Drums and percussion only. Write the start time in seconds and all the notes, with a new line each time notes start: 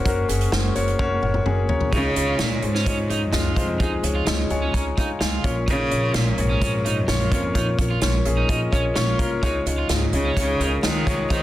0.06 kick, closed hi-hat
0.29 closed hi-hat
0.41 closed hi-hat
0.52 snare
0.75 closed hi-hat
0.88 closed hi-hat
0.99 kick, high tom
1.23 mid tom
1.34 mid tom
1.46 mid tom
1.69 floor tom
1.81 floor tom
1.92 kick, closed hi-hat
2.16 closed hi-hat
2.39 snare, closed hi-hat
2.62 closed hi-hat
2.75 snare
2.86 kick, closed hi-hat
3.10 closed hi-hat
3.33 snare, closed hi-hat
3.56 kick, closed hi-hat
3.80 kick, closed hi-hat
4.03 closed hi-hat
4.26 snare, closed hi-hat
4.50 closed hi-hat
4.74 kick, closed hi-hat
4.98 kick, closed hi-hat
5.21 snare, closed hi-hat
5.44 kick, closed hi-hat
5.68 kick, closed hi-hat
5.91 closed hi-hat
6.14 snare, closed hi-hat
6.38 closed hi-hat
6.62 kick, closed hi-hat
6.86 closed hi-hat
7.08 snare, closed hi-hat
7.20 closed hi-hat
7.32 kick, closed hi-hat
7.55 kick, closed hi-hat
7.79 kick, closed hi-hat
8.01 snare, closed hi-hat
8.25 closed hi-hat
8.49 kick, closed hi-hat
8.73 kick, closed hi-hat
8.96 snare, closed hi-hat
9.19 kick, closed hi-hat
9.43 kick, closed hi-hat
9.66 closed hi-hat
9.89 snare, closed hi-hat
10.13 closed hi-hat
10.37 kick, closed hi-hat
10.60 closed hi-hat
10.83 snare, closed hi-hat
11.07 kick, closed hi-hat
11.30 kick, closed hi-hat